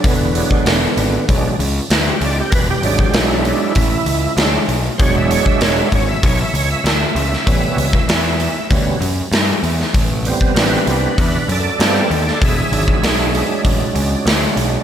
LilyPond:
<<
  \new Staff \with { instrumentName = "Tonewheel organ" } { \time 4/4 \key e \mixolydian \tempo 4 = 97 <d b>2 r4 b'16 g'16 d''16 g'16 | <ais' b'>16 g'16 d''16 g'16 e'2 r4 | <c'' cis''>16 e''16 cis''16 e''16 cis''16 e''16 cis''16 e''16 cis''16 e''16 cis''16 e''16 e''4~ | e''2 r2 |
r4 <d' ais' b'>8 <d' b'>8 <d' b'>8 <a' d''>8 <a' d''>8 <a' d''>8 | <gis' e''>2 r2 | }
  \new Staff \with { instrumentName = "Tonewheel organ" } { \clef bass \time 4/4 \key e \mixolydian r8 <fis gis d'>8 r4 <fis gis d'>8 r4. | r8 <fis gis d'>4. r4 <fis gis d'>8 r8 | <fis gis d'>4. r2 r8 | <g b cis'>8 r4. <g b cis'>8 r4. |
r8 <g b c'>4. r4 <g b c'>8 r8 | r8 <fis gis d'>2.~ <fis gis d'>8 | }
  \new Staff \with { instrumentName = "Picked electric bass" } { \clef bass \time 4/4 \key e \mixolydian e,,4 e,,8 gis,,8 b,,8 cis,8 d,8 cis,8 | e,,8 gis,,8 b,,4 a,,8 cis,8 d,8 b,,8 | e,,4 e,,8 gis,,8 b,,8 cis,8 d,8 cis,8 | a,,8 cis,8 e,4 d,8 fis,8 g,8 e,8 |
a,,4 a,,8 c,8 e,8 fis,8 g,8 dis,8 | e,,8 gis,,8 b,,4 a,,8 cis,8 d,8 b,,8 | }
  \new DrumStaff \with { instrumentName = "Drums" } \drummode { \time 4/4 <hho bd>8 hho16 bd16 <hho sn>8 hho8 <hho bd>8 hho8 <hho sn>8 hho8 | <hho bd>8 hho16 bd16 <hho sn>8 hho8 <hho bd>8 hho8 <hho sn>8 hho8 | <hho bd>8 hho16 bd16 <hho sn>8 <hho bd>8 <hho bd>8 hho8 <hho sn>8 hho16 sn16 | <hho bd>8 hho16 bd16 <hho sn>8 hho8 <hho bd>8 hho8 <hho sn>8 hho16 sn16 |
<hho bd>8 hho16 bd16 <hho sn>8 hho8 <hho bd>8 hho8 <hho sn>8 hho16 sn16 | <hho bd>8 hho16 bd16 <hho sn>8 hho8 <hho bd>8 hho8 <hho sn>8 hho8 | }
>>